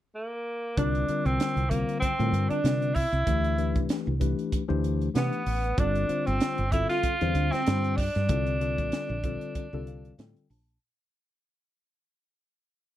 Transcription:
0.15 A#3
0.77 C2 D3 G3 C4 D4 F4 A#4, kick, closed hi-hat
0.95 closed hi-hat
1.08 D3 G3 C4 F4 A#4, muted fretless electric bass stroke, closed hi-hat
1.25 C2 C4, closed hi-hat
1.40 snare, closed hi-hat
1.56 C2, closed hi-hat
1.70 D3 G3 A#3 C4 F4 C5, kick, closed hi-hat
1.89 closed hi-hat
2.00 C4, muted fretless electric bass stroke, kick, closed hi-hat
2.19 A2 D3 G3 C4 F4 A#4, closed hi-hat
2.32 G2, closed hi-hat
2.49 D4, muted fretless electric bass stroke, closed hi-hat
2.64 C3 D3 G3 C4 F4 A#4, snare, closed hi-hat
2.82 closed hi-hat
2.95 E4, kick, open hi-hat
3.12 C2, closed hi-hat
3.26 D2 E3 A3 D4 G4 B4, kick, closed hi-hat
3.44 closed hi-hat
3.58 E3 A3 D4 G4 B4, closed hi-hat
3.75 C2, kick, closed hi-hat
3.89 snare, closed hi-hat
4.07 C2
4.20 E3 A3 D4 G4 B4, kick, closed hi-hat
4.39 closed hi-hat
4.52 kick, closed hi-hat
4.68 D2 E3 A3 D4 G4 C5
4.84 closed hi-hat
5.01 closed hi-hat
5.14 C3 E3 A3 B3 D4 G4 B4, snare, closed hi-hat
5.33 closed hi-hat
5.46 A1, open hi-hat
5.64 closed hi-hat
5.77 G1 D3 G3 C4 D4 F4 A4, kick, closed hi-hat
5.95 closed hi-hat
6.09 D3 G3 C4 F4 C5, closed hi-hat
6.27 G1 C4, closed hi-hat
6.40 snare, closed hi-hat
6.58 G1, closed hi-hat
6.72 D3 G3 C4 E4 F4 A4, kick, closed hi-hat
6.89 F4, snare, closed hi-hat
7.03 muted fretless electric bass stroke, kick, closed hi-hat
7.21 E2 D3 G3 C4 F4 C5, closed hi-hat
7.35 D2, closed hi-hat
7.52 C4, snare, closed hi-hat
7.67 G2 D3 G3 C4 F4 C5, snare, closed hi-hat
7.84 closed hi-hat
7.97 D4 F4 G4, kick, open hi-hat
8.15 G2, snare, closed hi-hat
8.29 C2 D3 G3 C4 F4 A4, kick, closed hi-hat
8.47 closed hi-hat
8.60 D3 G3 C4 F4 A4, closed hi-hat
8.78 A#1, kick, closed hi-hat
8.92 snare, closed hi-hat
9.09 A#1
9.23 D3 G3 C4 F4 A4 C5, kick, closed hi-hat
9.41 closed hi-hat
9.55 D5, kick, closed hi-hat
9.73 C2 D3 G3 C4 F4 A4
9.87 F5, closed hi-hat
10.05 closed hi-hat
10.18 A2 D3 G3 C4 F4 A4 G5, snare, closed hi-hat
10.37 closed hi-hat
10.50 A#1 F4 C5 A5, open hi-hat
10.69 closed hi-hat

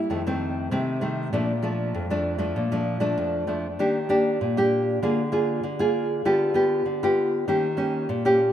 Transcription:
0.10 F2 D#3 A3 C4
0.27 D#3 A3 C4
0.71 C3 D#3 A3 C4
1.01 D#3 A3 C4
1.33 A#2 F3 A3 D4
1.62 F3 A3 D4
1.94 F2
2.10 F3 A3 D4
2.38 F3 A3 D4
2.56 A#2
2.72 F3 A3 D4
3.00 F3 A3 D4
3.17 F2
3.47 F3 A3 D4
3.79 D#3 A#3 D4 G4
4.09 A#3 D4 G4
4.41 A#2
4.57 A#3 D4 G4
5.02 D3 A#3 F4 G#4
5.32 A#3 F4 G#4
5.63 D3
5.79 A#3 F4 G#4
6.25 D3 B3 F4 G4
6.54 B3 F4 G4
6.86 D3
7.03 B3 F4 G4
7.48 D#3 A#3 C#4 G4
7.77 A#3 C#4 G4
8.09 A#2
8.25 A#3 C#4 G4

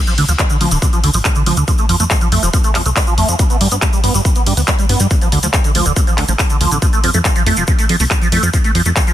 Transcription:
0.07 F3, closed hi-hat, shaker
0.18 D2 D3, open hi-hat
0.28 D2 F3, closed hi-hat, shaker
0.39 D3, kick, clap, closed hi-hat, shaker
0.50 D3, closed hi-hat, shaker
0.61 D2 F3, open hi-hat
0.71 D1 D3, closed hi-hat, shaker
0.82 D3, kick, closed hi-hat, shaker
0.93 F3, closed hi-hat, shaker
1.04 D2 D3, open hi-hat
1.14 A1 F3, open hi-hat, shaker
1.25 D3, kick, clap, closed hi-hat, shaker
1.35 D3, closed hi-hat, shaker
1.46 D2 F3, open hi-hat
1.57 D2 D3, closed hi-hat, shaker
1.68 F3, kick, closed hi-hat, shaker
1.78 A3, closed hi-hat, shaker
1.89 F2 F3, open hi-hat
2.00 F2 A3, closed hi-hat, shaker
2.10 F3, kick, clap, closed hi-hat, shaker
2.21 F3, closed hi-hat, shaker
2.32 F2 A3, open hi-hat
2.43 F1 F3, closed hi-hat, shaker
2.53 F3, kick, closed hi-hat, shaker
2.64 A3, closed hi-hat, shaker
2.75 F2 F3, clap, open hi-hat
2.86 C2 A3, closed hi-hat, shaker
2.96 F3, kick, clap, open hi-hat, shaker
3.07 F3, closed hi-hat, shaker
3.18 F2 A3, open hi-hat
3.28 F2 F3, closed hi-hat, shaker
3.39 G3, kick, closed hi-hat, shaker
3.50 B3, closed hi-hat, shaker
3.61 G2 G3, open hi-hat
3.71 G2 B3, closed hi-hat, shaker
3.82 G3, kick, clap, closed hi-hat, shaker
3.93 G3, closed hi-hat, shaker
4.04 G2 B3, open hi-hat
4.14 G1 G3, closed hi-hat, shaker
4.25 G3, kick, closed hi-hat, shaker
4.35 B3, closed hi-hat, shaker
4.46 G2 G3, open hi-hat
4.57 D2 B3, open hi-hat, shaker
4.67 G3, kick, clap, closed hi-hat, shaker
4.79 G3, closed hi-hat, shaker
4.89 G2 B3, open hi-hat
5.00 G2 G3, closed hi-hat, shaker
5.10 D3, kick, closed hi-hat, shaker
5.21 F3, closed hi-hat, shaker
5.32 D2 D3, open hi-hat
5.43 D2 F3, closed hi-hat, shaker
5.53 D3, kick, clap, closed hi-hat, shaker
5.64 D3, closed hi-hat, shaker
5.75 D2 F3, open hi-hat
5.86 D1 D3, closed hi-hat, shaker
5.96 D3, kick, closed hi-hat, shaker
6.07 F3, closed hi-hat, shaker
6.18 D2 D3, clap, open hi-hat
6.28 A1 F3, closed hi-hat, shaker
6.39 D3, kick, clap, open hi-hat, shaker
6.50 D3, closed hi-hat, shaker
6.61 D2 F3, open hi-hat
6.71 A1 D3, closed hi-hat, shaker
6.82 F3, kick, closed hi-hat, shaker
6.93 A3, closed hi-hat, shaker
7.04 F2 F3, open hi-hat
7.14 F2 A3, closed hi-hat, shaker
7.25 F3, kick, clap, closed hi-hat, shaker
7.36 F3, closed hi-hat, shaker
7.46 F2 A3, open hi-hat
7.57 F1 F3, closed hi-hat, shaker
7.67 F3, kick, closed hi-hat, shaker
7.79 A3, closed hi-hat, shaker
7.89 F2 F3, open hi-hat
8.00 C2 A3, open hi-hat, shaker
8.11 F3, kick, clap, closed hi-hat, shaker
8.21 F3, closed hi-hat, shaker
8.32 F2 A3, open hi-hat
8.43 F2 F3, closed hi-hat, shaker
8.53 F3, kick, closed hi-hat, shaker
8.64 A3, closed hi-hat, shaker
8.75 F2 F3, open hi-hat
8.85 F2 A3, closed hi-hat, shaker
8.96 F3, kick, clap, closed hi-hat, shaker
9.07 F3, closed hi-hat, shaker

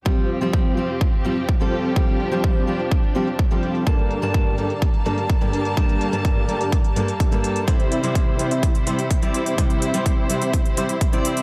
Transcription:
0.05 F2 F3 G3 C4 F4 G4 C5 F5, kick
0.18 closed hi-hat
0.30 closed hi-hat
0.41 F3 G3 C4 F4 G4 C5 F5, closed hi-hat
0.53 kick
0.77 F3 G3 C4 G4, closed hi-hat
0.89 C4 F4 G4 C5 F5, closed hi-hat
1.01 kick, closed hi-hat
1.13 closed hi-hat
1.24 F3 G3 C4 F4 G4 C5 F5, closed hi-hat
1.37 closed hi-hat
1.49 kick, closed hi-hat
1.60 F3 G3 C4 F4 G4 A4 C5 F5, closed hi-hat
1.72 closed hi-hat
1.84 closed hi-hat
1.96 F3 G3 C4 D4 G4, kick
2.08 closed hi-hat
2.20 closed hi-hat
2.32 F3 G3 C4 F4 G4 C5 F5, closed hi-hat
2.44 kick
2.67 F3 G3 C4 G4, closed hi-hat
2.80 C4 F4 G4 C5 F5, closed hi-hat
2.91 kick, closed hi-hat
3.03 closed hi-hat
3.15 F3 G3 C4 F4 G4 C5 F5, closed hi-hat
3.27 closed hi-hat
3.39 kick, closed hi-hat
3.51 F3 G3 C4 F4 G4 A4 C5 F5, closed hi-hat
3.63 closed hi-hat
3.75 closed hi-hat
3.86 G2 G3 A#3 D4 G4 A4 A#4 D5 A5, kick, closed hi-hat
3.99 closed hi-hat
4.11 closed hi-hat
4.22 G2 G3 A#3 D4 G4 A4 A#4 D5 A5, closed hi-hat
4.34 kick, closed hi-hat
4.58 G2 G3 A#3 D4 A4, closed hi-hat
4.70 D4 G4 A4 A#4 D5, closed hi-hat
4.82 kick, closed hi-hat
4.94 closed hi-hat
5.05 G2 G3 A#3 D4 G4 A4 A#4 D5, closed hi-hat
5.18 closed hi-hat
5.30 kick, closed hi-hat
5.41 G2 G3 A#3 D4 G4 A4 A#4 D5, closed hi-hat
5.53 closed hi-hat
5.65 closed hi-hat
5.76 G2 G3 A#3 D4 G4 A4 A#4 A5, kick, closed hi-hat
5.89 closed hi-hat
6.01 closed hi-hat
6.12 G2 G3 A#3 D4 G4 A4 A#4 D5 A5, closed hi-hat
6.25 kick, closed hi-hat
6.48 G2 G3 A#3 D4 A4, closed hi-hat
6.60 D4 G4 A4 A#4 D5, closed hi-hat
6.72 kick, closed hi-hat
6.84 closed hi-hat
6.96 G2 G3 A#3 D4 A4, closed hi-hat
7.08 closed hi-hat
7.20 D4 G4 A4 A#4 E5, kick, closed hi-hat
7.31 G2 G3 A#3 D4 A4, closed hi-hat
7.44 closed hi-hat
7.56 closed hi-hat
7.67 C3 G3 C4 E4 G4 C5 E5, kick, closed hi-hat
7.80 closed hi-hat
7.92 closed hi-hat
8.03 C3 G3 C4 E4 G4 C5 E5, closed hi-hat
8.15 kick, closed hi-hat
8.39 C3 G3 C4 E4 C5, closed hi-hat
8.51 C4 E4 G4 C5 E5, closed hi-hat
8.63 kick, closed hi-hat
8.75 closed hi-hat
8.86 C3 G3 C4 E4 G4 C5 E5, closed hi-hat
8.99 closed hi-hat
9.11 kick, closed hi-hat
9.22 C3 G3 C4 E4 G4 C5 D5 E5, closed hi-hat
9.34 closed hi-hat
9.46 closed hi-hat
9.58 C3 G3 C4 E4 G4 C5 E5, kick, closed hi-hat
9.70 closed hi-hat
9.82 closed hi-hat
9.93 C3 G3 C4 E4 G4 C5 E5, closed hi-hat
10.06 kick, closed hi-hat
10.29 C3 G3 C4 E4 C5, closed hi-hat
10.42 C4 E4 G4 C5 E5, closed hi-hat
10.53 kick, closed hi-hat
10.66 closed hi-hat
10.77 C3 G3 C4 E4 G4 C5 E5, closed hi-hat
10.89 closed hi-hat
11.01 kick, closed hi-hat
11.12 C3 G3 C4 E4 G4 C5 D5 E5, closed hi-hat
11.25 closed hi-hat
11.37 closed hi-hat

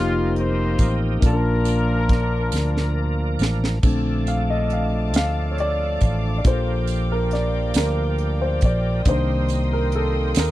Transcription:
Already playing: F1 F3 A#3 C4 D#4 F4 G4
0.36 C5, closed hi-hat
0.79 A1, kick, closed hi-hat, tambourine
1.20 A#1 A#2 F3 A#3 C#4 D4 A#4, kick, closed hi-hat, tambourine
1.24 D4 F4 A#4 A5
1.29 D4
1.65 closed hi-hat, tambourine
2.09 kick, snare, closed hi-hat
2.52 D2, snare, tambourine
2.77 snare
3.39 A1, snare, tambourine
3.64 snare
3.83 A#1 D3 F3 A3 C4 D4 A4 F5 A5 D6, kick, crash, tambourine
4.27 F5, closed hi-hat, tambourine
4.50 D#5
4.70 F5, closed hi-hat
5.14 D2 F5, snare, closed hi-hat, tambourine
5.51 C#5
5.58 D5, closed hi-hat
6.01 A1, kick, closed hi-hat, tambourine
6.38 D5
6.44 A#1 F3 A#3 D4 G4 A4 C5 G5, kick, closed hi-hat, tambourine
6.88 closed hi-hat, tambourine
7.12 A#4
7.31 D5, snare, closed hi-hat
7.74 D2 A#4, snare, closed hi-hat, tambourine
8.18 closed hi-hat
8.42 C5
8.61 A#1, kick, closed hi-hat, tambourine
8.65 D5
9.05 C2 D#3 A#3 C4 D4 G4 C5 C6 D#6, kick, closed hi-hat, tambourine
9.49 closed hi-hat, tambourine
9.73 A#4
9.92 A4, closed hi-hat
10.35 D#2, snare, closed hi-hat, tambourine
10.39 A#4

